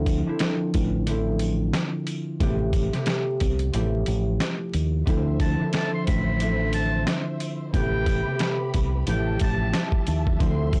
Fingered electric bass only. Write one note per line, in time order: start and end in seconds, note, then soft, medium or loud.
0.00 0.21 D2 loud
0.75 1.70 A1 loud
2.41 2.88 A1 loud
3.41 3.71 C2 medium
3.74 4.04 A1 loud
4.08 4.37 A1 loud
4.74 5.04 D#2 medium
5.07 5.54 D2 loud
6.08 7.04 A1 loud
7.74 8.21 A1 loud
8.75 9.04 C2 medium
9.07 9.37 A1 loud
9.41 9.71 A1 medium
10.08 10.38 D#2 medium
10.40 10.80 D2 loud